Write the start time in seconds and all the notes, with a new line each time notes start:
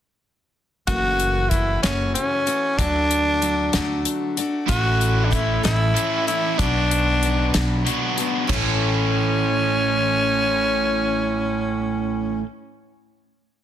0.87 F#1 F#2 C#3 E3 A3 C#4 F#4, kick, closed hi-hat
1.20 closed hi-hat
1.49 E3 A3 C#4 E4 F#4, kick, closed hi-hat
1.83 F#1 F#2 C#3 E3 A3 C#4 F#4, snare, closed hi-hat
2.14 C#4, closed hi-hat
2.46 E3 A3 C#4 F#4, closed hi-hat
2.78 D2 D3 F#3 A3 D4 F#4, kick, closed hi-hat
3.11 closed hi-hat
3.42 F#3 A3 D4 F#4, closed hi-hat
3.73 D2 D3 F#3 A3 D4 F#4, snare, closed hi-hat
4.05 closed hi-hat
4.37 A3 D4 F#4, closed hi-hat
4.68 A1 A2 E3 A3 C#4 E4 F#4 A4, kick, closed hi-hat
5.01 closed hi-hat
5.25 D4
5.31 A3 C#4 E4 A4, kick, closed hi-hat
5.63 A1 A2 E3 A3 C#4 E4 A4, snare, closed hi-hat
5.94 A2 E3 A3 C#4 E4, closed hi-hat
6.27 A3 C#4 E4 A4, closed hi-hat
6.59 B1 B2 F#3 B3 D4 F#4, kick, closed hi-hat
6.91 closed hi-hat
7.23 F#3 B3 D4 F#4, closed hi-hat
7.54 B1 B2 F#3 B3 D4 F#4, snare, closed hi-hat
7.84 B2 F#3 B3 D4 F#4, closed hi-hat
8.17 B3 D4 F#4, closed hi-hat
8.47 A1 A2 E3 A3 C#4, kick, floor tom, crash
8.52 C#4 E4 A4